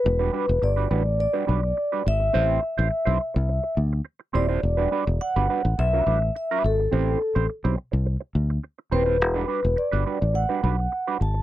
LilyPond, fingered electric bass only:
\new Staff \with { instrumentName = "Fingered electric bass" } { \clef bass \time 4/4 \key e \minor \tempo 4 = 105 e,,8 r16 e,,16 g,,8 a,,8. r16 b,,8 r8 gis,,8 | a,,8 r16 a,,16 r16 b,,16 r16 c,8 r16 d,8 r8 dis,,8 | e,,8 r16 e,,16 r16 g,,16 r16 a,,16 b,,8 a,,8 r8 gis,,8 | a,,8 r16 a,,16 r16 b,,16 r16 c,8 r16 d,8 r8 dis,,8 |
e,,8 r16 e,,16 r16 g,,16 r16 a,,8 r16 b,,8 r8 gis,,8 | }